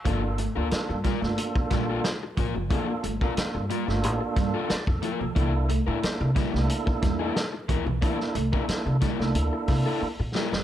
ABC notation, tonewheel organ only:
X:1
M:4/4
L:1/16
Q:1/4=90
K:Gdor
V:1 name="Tonewheel organ"
[B,DFA]2 z [B,DFA]3 z [B,DFA]4- [B,DFA] z4 | [B,DFA]2 z [B,DFA]3 z [B,DFA]4- [B,DFA] d A3 | [B,DEA]2 z [B,DEA]3 z [B,DEGA]4- [B,DEGA] z4 | [B,DEA]2 z [B,DEA]3 z [B,DEA]4- [B,DEA] z4 |]